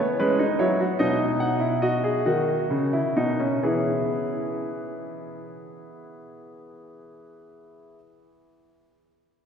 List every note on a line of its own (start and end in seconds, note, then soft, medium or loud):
0.00 0.19 B3 medium
0.20 0.44 G#3 medium
0.20 0.39 C#4 medium
0.20 0.44 B4 medium
0.39 0.58 D#4 medium
0.59 0.84 F#3 medium
0.59 0.79 E4 medium
0.59 0.84 C#5 medium
0.80 0.99 F#4 medium
0.99 2.22 B2 medium
0.99 1.59 D#4 medium
0.99 1.25 D#5 medium
1.40 1.66 F#5 medium
1.60 1.81 E4 medium
1.82 2.03 F#4 medium
1.82 3.59 D#5 medium
2.04 2.25 G#4 medium
2.26 2.53 D#3 medium
2.26 2.91 F#4 medium
2.71 2.99 C#3 medium
2.93 3.15 E4 medium
3.17 3.46 B2 medium
3.17 3.39 D#4 medium
3.40 3.63 C#4 medium
3.63 7.96 E3 medium
3.63 7.96 B3 medium
3.63 7.97 E4 medium
3.63 7.96 G#4 medium